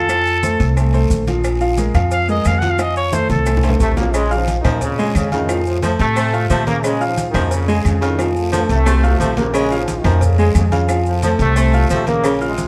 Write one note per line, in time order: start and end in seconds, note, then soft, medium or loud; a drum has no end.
0.00 0.54 F2 medium
0.00 0.73 A4 loud
0.09 0.37 F3 medium
0.09 0.37 F4 medium
0.09 0.37 F5 medium
0.09 cowbell loud
0.09 high conga soft
0.09 low agogo loud
0.09 long guiro medium
0.09 claves medium
0.09 maracas medium
0.26 high conga soft
0.26 maracas soft
0.43 0.70 A3 medium
0.43 0.71 A4 medium
0.43 0.71 C5 medium
0.43 cowbell medium
0.43 high conga medium
0.43 low agogo medium
0.43 short guiro medium
0.43 maracas medium
0.60 1.07 C2 loud
0.60 cowbell medium
0.60 high conga soft
0.60 short guiro medium
0.60 maracas soft
0.76 0.90 A3 medium
0.76 0.90 A4 medium
0.76 0.91 C5 medium
0.76 cowbell medium
0.76 low agogo loud
0.76 long guiro medium
0.76 claves medium
0.76 maracas medium
0.93 1.21 A3 medium
0.93 1.21 A4 medium
0.93 1.21 C5 medium
0.93 high conga soft
0.93 low agogo medium
0.93 maracas soft
1.10 1.89 A#1 medium
1.10 cowbell medium
1.10 high conga loud
1.10 short guiro medium
1.10 maracas medium
1.27 1.55 F3 medium
1.27 1.55 F4 medium
1.27 1.55 F5 medium
1.27 cowbell medium
1.27 high conga medium
1.27 low agogo medium
1.27 short guiro medium
1.27 maracas soft
1.44 cowbell loud
1.44 high conga soft
1.44 low agogo loud
1.44 long guiro medium
1.44 claves medium
1.44 maracas medium
1.61 1.75 F3 medium
1.61 1.75 F4 medium
1.61 1.75 F5 medium
1.61 high conga soft
1.61 low agogo medium
1.61 maracas soft
1.78 1.92 G#3 medium
1.78 1.92 G#4 medium
1.78 1.92 A#4 medium
1.78 cowbell medium
1.78 high conga loud
1.78 short guiro medium
1.78 maracas medium
1.94 2.42 F2 medium
1.94 2.22 F3 medium
1.94 2.22 F4 medium
1.94 2.23 F5 loud
1.94 cowbell medium
1.94 high conga loud
1.94 low conga medium
1.94 low agogo loud
1.94 short guiro medium
1.94 claves medium
1.94 maracas soft
2.11 2.28 F5 medium
2.11 cowbell loud
2.11 long guiro medium
2.11 maracas medium
2.28 2.56 G#3 medium
2.28 2.56 G#4 medium
2.28 2.56 A#4 medium
2.28 2.48 D#5 medium
2.28 high conga soft
2.28 maracas soft
2.45 3.24 F2 medium
2.45 2.60 F5 medium
2.45 cowbell medium
2.45 high conga medium
2.45 low timbale medium
2.45 low agogo loud
2.45 short guiro medium
2.45 claves medium
2.45 maracas medium
2.58 2.76 F3 medium
2.58 2.71 F#5 medium
2.58 cowbell medium
2.58 high conga medium
2.58 short guiro medium
2.58 maracas soft
2.62 2.76 F4 medium
2.62 2.76 F5 medium
2.62 low agogo medium
2.70 2.82 F5 medium
2.78 3.06 F3 medium
2.78 3.06 F4 medium
2.78 2.96 D#5 medium
2.78 3.07 F5 medium
2.78 cowbell loud
2.78 high bongo loud
2.78 high conga soft
2.78 low agogo loud
2.78 long guiro medium
2.78 claves medium
2.78 maracas medium
2.96 3.15 C#5 medium
2.96 high conga soft
2.96 maracas soft
3.12 3.40 A3 medium
3.12 3.40 A4 medium
3.12 3.41 C5 medium
3.12 3.30 C5 medium
3.12 cowbell medium
3.12 high bongo loud
3.12 high conga medium
3.12 low agogo medium
3.12 short guiro medium
3.12 maracas medium
3.30 3.77 C2 loud
3.30 3.62 A4 medium
3.30 cowbell medium
3.30 high bongo medium
3.30 short guiro medium
3.30 maracas soft
3.35 high conga medium
3.46 3.60 A3 medium
3.46 3.61 A4 medium
3.46 3.61 C5 medium
3.46 cowbell medium
3.46 low bongo medium
3.46 low agogo loud
3.46 long guiro medium
3.46 claves medium
3.46 maracas medium
3.57 low conga medium
3.63 3.91 A3 medium
3.63 3.91 A4 medium
3.63 3.92 C5 medium
3.63 high timbale loud
3.63 low agogo medium
3.63 maracas soft
3.69 low conga medium
3.80 4.59 A#1 medium
3.80 3.96 C3 medium
3.80 3.96 A3 loud
3.80 cowbell medium
3.80 low conga medium
3.80 short guiro medium
3.80 maracas medium
3.92 low conga medium
3.97 4.13 C#3 medium
3.97 4.11 F3 medium
3.97 4.13 A#3 loud
3.97 4.11 F4 medium
3.97 4.11 F5 medium
3.97 cowbell medium
3.97 low bongo loud
3.97 low timbale medium
3.97 low agogo medium
3.97 short guiro medium
3.97 maracas soft
4.03 low conga medium
4.14 4.41 C#3 medium
4.14 4.37 C#3 medium
4.14 4.36 G#3 loud
4.14 cowbell loud
4.14 high conga soft
4.14 low agogo loud
4.14 long guiro medium
4.14 claves medium
4.14 maracas medium
4.31 4.58 F4 medium
4.31 4.59 F5 medium
4.31 4.59 F6 medium
4.31 high conga soft
4.31 low agogo medium
4.31 maracas soft
4.36 4.59 G#2 medium
4.36 4.59 F3 medium
4.48 cowbell medium
4.48 high conga loud
4.48 short guiro medium
4.48 maracas medium
4.60 4.81 F#2 medium
4.60 4.80 D#3 medium
4.64 5.12 A#2 medium
4.64 4.83 F3 medium
4.64 4.92 A#3 medium
4.64 4.92 A#4 medium
4.64 4.93 A#5 medium
4.64 cowbell medium
4.64 high conga loud
4.64 low conga medium
4.64 low agogo loud
4.64 short guiro medium
4.64 claves medium
4.64 maracas soft
4.81 5.14 F2 medium
4.81 5.13 C#3 loud
4.81 cowbell loud
4.81 high conga soft
4.81 low conga medium
4.81 long guiro medium
4.81 maracas medium
4.99 5.16 G#3 medium
4.99 5.26 G#3 medium
4.99 5.26 G#4 medium
4.99 5.26 G#5 medium
4.99 maracas soft
5.15 5.94 F2 medium
5.15 5.32 F2 medium
5.15 5.31 C#3 loud
5.15 cowbell medium
5.15 high conga medium
5.15 low agogo loud
5.15 short guiro medium
5.15 claves medium
5.15 maracas medium
5.32 5.64 A2 medium
5.32 5.60 C#3 medium
5.32 5.63 D#3 medium
5.32 5.46 F4 medium
5.32 5.46 F5 medium
5.32 5.46 F6 medium
5.32 cowbell medium
5.32 high conga medium
5.32 low agogo medium
5.32 short guiro medium
5.32 maracas soft
5.49 5.76 F3 medium
5.49 5.77 F4 medium
5.49 5.77 F5 medium
5.49 cowbell loud
5.49 high conga soft
5.49 low agogo loud
5.49 long guiro medium
5.49 claves medium
5.49 maracas medium
5.66 5.82 A2 medium
5.66 5.81 F3 medium
5.66 high conga soft
5.66 maracas soft
5.82 5.91 A2 medium
5.82 5.90 F3 medium
5.82 6.01 F3 medium
5.82 6.10 A3 medium
5.82 6.10 A4 medium
5.82 6.11 A5 medium
5.82 cowbell medium
5.82 high conga loud
5.82 low agogo medium
5.82 short guiro medium
5.82 maracas medium
5.99 6.47 A2 loud
5.99 6.47 C3 medium
5.99 6.47 A3 loud
5.99 cowbell medium
5.99 high conga soft
5.99 short guiro medium
5.99 maracas soft
6.16 6.34 A3 medium
6.16 6.30 C4 medium
6.16 6.31 C5 medium
6.16 6.31 C6 medium
6.16 cowbell loud
6.16 high conga soft
6.16 low agogo loud
6.16 long guiro medium
6.16 claves medium
6.16 maracas medium
6.33 6.61 F4 medium
6.33 6.61 F5 medium
6.33 6.61 F6 medium
6.33 high conga soft
6.33 low agogo medium
6.33 maracas soft
6.50 7.29 A#2 medium
6.50 6.66 C3 medium
6.50 6.68 F3 medium
6.50 6.66 A3 loud
6.50 cowbell medium
6.50 high conga loud
6.50 low timbale medium
6.50 short guiro medium
6.50 maracas medium
6.67 6.83 C#3 medium
6.67 6.95 A#3 medium
6.67 6.83 A#3 loud
6.67 6.95 A#4 medium
6.67 6.95 A#5 medium
6.67 cowbell medium
6.67 high conga medium
6.67 low agogo medium
6.67 short guiro medium
6.67 maracas soft
6.83 7.11 C#3 medium
6.83 7.07 C#3 medium
6.83 7.06 G#3 loud
6.83 cowbell loud
6.83 high conga soft
6.83 low agogo loud
6.83 long guiro medium
6.83 claves medium
6.83 maracas medium
7.01 7.28 F4 medium
7.01 7.29 F5 medium
7.01 7.29 F6 medium
7.01 high conga soft
7.01 low agogo medium
7.01 maracas soft
7.07 7.28 G#2 medium
7.07 7.27 F3 medium
7.17 cowbell medium
7.17 high conga loud
7.17 short guiro medium
7.17 maracas medium
7.29 7.51 F#2 medium
7.29 7.50 D#3 loud
7.34 7.82 F2 medium
7.34 7.52 F3 medium
7.34 7.62 A#3 medium
7.34 7.62 A#4 medium
7.34 7.63 A#5 medium
7.34 cowbell medium
7.34 high conga loud
7.34 low conga medium
7.34 low agogo loud
7.34 short guiro medium
7.34 claves medium
7.34 maracas soft
7.51 7.84 F2 medium
7.51 7.83 C#3 loud
7.51 cowbell loud
7.51 high conga soft
7.51 long guiro medium
7.51 maracas medium
7.68 7.86 G#3 medium
7.68 7.96 G#3 medium
7.68 7.96 G#4 medium
7.68 7.96 G#5 medium
7.68 high conga soft
7.68 maracas soft
7.85 8.64 F2 medium
7.85 8.02 F2 medium
7.85 8.01 C#3 loud
7.85 cowbell medium
7.85 high conga medium
7.85 low agogo loud
7.85 short guiro medium
7.85 claves medium
7.85 maracas medium
8.01 8.34 A2 medium
8.01 8.29 C#3 medium
8.01 8.34 D#3 medium
8.01 8.16 F4 medium
8.01 8.16 F5 medium
8.01 8.16 F6 medium
8.01 cowbell medium
8.01 low agogo medium
8.01 short guiro medium
8.01 maracas soft
8.19 8.47 F3 medium
8.19 8.47 F4 medium
8.19 8.47 F5 medium
8.19 cowbell loud
8.19 high conga soft
8.19 low agogo loud
8.19 long guiro medium
8.19 claves medium
8.19 maracas medium
8.36 8.53 A2 medium
8.36 8.52 F3 medium
8.36 high conga soft
8.36 maracas soft
8.52 8.61 A2 medium
8.52 8.70 F3 medium
8.52 8.61 F3 medium
8.52 8.80 A3 medium
8.52 8.80 A4 medium
8.52 8.81 A5 medium
8.52 cowbell medium
8.52 high conga loud
8.52 high timbale loud
8.52 low agogo medium
8.52 short guiro medium
8.52 maracas medium
8.69 9.17 C2 medium
8.69 9.17 C3 medium
8.69 9.17 A3 loud
8.69 cowbell medium
8.69 short guiro medium
8.69 maracas soft
8.85 9.03 A3 medium
8.85 9.00 C4 medium
8.85 9.00 C5 medium
8.85 9.01 C6 medium
8.85 cowbell loud
8.85 high conga soft
8.85 low timbale medium
8.85 low agogo loud
8.85 long guiro medium
8.85 claves medium
8.85 maracas medium
9.03 9.31 F4 medium
9.03 9.31 F5 medium
9.03 9.31 F6 medium
9.03 high conga soft
9.03 low timbale loud
9.03 low agogo medium
9.03 maracas soft
9.19 9.99 A#1 medium
9.19 9.36 C3 medium
9.19 9.37 F3 medium
9.19 9.36 A3 loud
9.19 cowbell medium
9.19 high conga medium
9.19 short guiro medium
9.19 maracas medium
9.37 9.53 C#3 medium
9.37 9.65 A#3 medium
9.37 9.53 A#3 medium
9.37 9.65 A#4 medium
9.37 9.65 A#5 medium
9.37 cowbell medium
9.37 high conga medium
9.37 low timbale loud
9.37 low agogo medium
9.37 short guiro medium
9.37 maracas soft
9.53 9.82 C#3 loud
9.53 9.76 C#3 medium
9.53 9.75 G#3 loud
9.53 cowbell loud
9.53 high conga soft
9.53 low agogo loud
9.53 long guiro medium
9.53 claves medium
9.53 maracas medium
9.70 9.99 F4 medium
9.70 9.99 F5 medium
9.70 9.99 F6 medium
9.70 high conga soft
9.70 low agogo medium
9.70 maracas soft
9.77 10.00 G#2 medium
9.77 9.99 F3 medium
9.88 cowbell medium
9.88 high conga loud
9.88 short guiro medium
9.88 maracas medium
10.00 10.22 F#2 medium
10.00 10.22 D#3 medium
10.04 10.52 F2 loud
10.04 10.22 F3 medium
10.04 10.32 A#3 medium
10.04 10.32 A#4 medium
10.04 10.33 A#5 medium
10.04 cowbell medium
10.04 high conga loud
10.04 low conga loud
10.04 low agogo loud
10.04 short guiro medium
10.04 claves medium
10.04 maracas soft
10.21 10.56 F2 medium
10.21 10.55 C#3 medium
10.21 cowbell loud
10.21 high conga soft
10.21 low conga medium
10.21 long guiro medium
10.21 maracas medium
10.38 10.66 G#3 medium
10.38 10.56 G#3 medium
10.38 10.66 G#4 medium
10.38 10.66 G#5 medium
10.38 high conga soft
10.38 maracas soft
10.55 11.34 F2 medium
10.55 10.65 F2 medium
10.55 10.64 C#3 medium
10.55 cowbell medium
10.55 high conga loud
10.55 low timbale medium
10.55 low agogo loud
10.55 short guiro medium
10.55 claves medium
10.55 maracas medium
10.72 10.99 C#3 medium
10.72 10.86 F4 medium
10.72 10.86 F5 medium
10.72 10.86 F6 medium
10.72 cowbell medium
10.72 high conga medium
10.72 low agogo loud
10.72 short guiro medium
10.72 maracas soft
10.89 11.17 F3 medium
10.89 11.17 F4 medium
10.89 11.17 F5 medium
10.89 cowbell loud
10.89 low agogo medium
10.89 long guiro medium
10.89 claves medium
10.89 maracas medium
11.06 11.22 A2 medium
11.06 11.22 F3 medium
11.06 high conga soft
11.06 maracas soft
11.22 11.32 A2 medium
11.22 11.41 F3 medium
11.22 11.31 F3 loud
11.22 11.50 A3 medium
11.22 11.50 A4 medium
11.22 11.51 A5 medium
11.22 cowbell medium
11.22 high conga loud
11.22 low agogo medium
11.22 short guiro medium
11.22 maracas medium
11.39 11.86 C2 loud
11.39 11.88 C3 loud
11.39 11.88 A3 loud
11.39 cowbell medium
11.39 high conga soft
11.39 short guiro medium
11.39 maracas soft
11.56 11.74 A3 medium
11.56 11.70 C4 medium
11.56 11.71 C5 medium
11.56 11.71 C6 medium
11.56 cowbell loud
11.56 low agogo loud
11.56 long guiro medium
11.56 claves medium
11.56 maracas medium
11.73 12.01 F4 medium
11.73 12.01 F5 medium
11.73 12.01 F6 medium
11.73 low agogo medium
11.73 maracas soft
11.90 12.68 A#1 medium
11.90 12.07 C3 medium
11.90 12.08 F3 medium
11.90 12.07 A3 loud
11.90 cowbell medium
11.90 high conga medium
11.90 low timbale medium
11.90 short guiro medium
11.90 maracas medium
12.07 12.44 C#3 medium
12.07 12.35 A#3 medium
12.07 12.44 A#3 loud
12.07 12.35 A#4 medium
12.07 12.35 A#5 medium
12.07 cowbell medium
12.07 high conga medium
12.07 low agogo medium
12.07 short guiro medium
12.07 maracas soft
12.24 12.52 C#3 loud
12.24 cowbell loud
12.24 high conga soft
12.24 low agogo medium
12.24 long guiro medium
12.24 claves medium
12.24 maracas medium
12.41 12.68 F4 medium
12.41 12.68 F5 medium
12.41 12.68 F6 medium
12.41 high conga soft
12.41 low agogo medium
12.41 maracas soft
12.48 12.68 C3 medium
12.48 12.68 G#3 medium
12.58 cowbell medium
12.58 high conga loud
12.58 short guiro medium
12.58 maracas medium